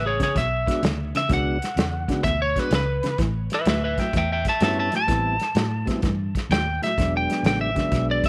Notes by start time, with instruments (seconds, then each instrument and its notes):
Already playing: fingered electric bass A1, clean electric guitar E2 C#3
0.06 lead electric guitar G#4 C#5
0.20 clean electric guitar E2 C#3, lead electric guitar G#4 C#5, kick, snare, closed hi-hat
0.35 fingered electric bass B1, clean electric guitar E2 B2, lead electric guitar E5, kick, snare, closed hi-hat
0.67 tonewheel organ G#3 B3 D4 F#4, kick, snare, closed hi-hat
0.82 fingered electric bass D2, clean electric guitar E2 C#3, snare, closed hi-hat
1.15 clean electric guitar E2 C#3, lead electric guitar E5, snare, closed hi-hat
1.29 fingered electric bass C#2, clean electric guitar E2 B2, tonewheel organ G#3 B3 D4 F#4, kick, snare, closed hi-hat
1.33 lead electric guitar F#5
1.62 snare, closed hi-hat
1.76 fingered electric bass E2, clean electric guitar E2 C#3, snare, closed hi-hat
2.08 clean electric guitar E2 C#3, tonewheel organ G#3 B3 D4 F#4, kick, snare, closed hi-hat
2.23 fingered electric bass D2, clean electric guitar E2 B2, lead electric guitar E5, kick, snare, closed hi-hat
2.42 lead electric guitar C#5
2.56 tonewheel organ G#3 B3 D4 F#4, lead electric guitar B4, kick, snare, closed hi-hat
2.71 fingered electric bass C#2, clean electric guitar E2 C#3, snare, closed hi-hat
2.75 lead electric guitar B4
3.03 clean electric guitar E2 C#3, snare, closed hi-hat
3.18 fingered electric bass A1, clean electric guitar A2 E3, kick, snare, closed hi-hat
3.50 snare, closed hi-hat
3.54 lead electric guitar B4 E5
3.65 fingered electric bass D2, clean electric guitar A2 F#3, lead electric guitar B4, snare, closed hi-hat
3.70 lead electric guitar E5
3.84 lead electric guitar B4 E5
3.98 clean electric guitar A2 F#3, lead electric guitar E5 G5, kick, snare, closed hi-hat
4.13 fingered electric bass E2, clean electric guitar A2 E3, kick, snare, closed hi-hat
4.17 lead electric guitar E5 G5
4.32 lead electric guitar E5 G5
4.45 lead electric guitar E5, kick, snare, closed hi-hat
4.49 lead electric guitar A5
4.60 fingered electric bass G2, clean electric guitar A2 F#3, tonewheel organ G3 B3 C#4 E4, lead electric guitar E5 A5, snare, closed hi-hat
4.79 lead electric guitar E5 A5
4.92 clean electric guitar A2 F#3, snare, closed hi-hat
4.97 lead electric guitar A5
5.07 fingered electric bass A1, clean electric guitar A2 E3, tonewheel organ G3 B3 C4 E4, kick, snare, closed hi-hat
5.40 snare, closed hi-hat
5.55 fingered electric bass A2, clean electric guitar A2 F#3, snare, closed hi-hat
5.86 clean electric guitar A2 F#3, tonewheel organ G3 B3 C4 E4, kick, snare, closed hi-hat
6.02 fingered electric bass G2, clean electric guitar A2 E3, kick, snare, closed hi-hat
6.35 kick, snare, closed hi-hat
6.50 fingered electric bass D#2, clean electric guitar A2 F#3, lead electric guitar G5, snare, closed hi-hat
6.82 clean electric guitar A2 F#3, lead electric guitar E5, snare, closed hi-hat
6.97 fingered electric bass E1, clean electric guitar E2 B2, tonewheel organ F#3 G#3 B3 D4, kick, snare, closed hi-hat
7.17 lead electric guitar G5
7.30 snare, closed hi-hat
7.43 fingered electric bass A1, clean electric guitar E2 C#3, lead electric guitar G5, snare, closed hi-hat
7.61 lead electric guitar E5
7.75 clean electric guitar E2 C#3, tonewheel organ F#3 G#3 B3 D4, kick, snare, closed hi-hat
7.92 fingered electric bass B1, clean electric guitar E2 B2, kick, snare, closed hi-hat
8.11 lead electric guitar D5
8.24 lead electric guitar E5, kick, snare, closed hi-hat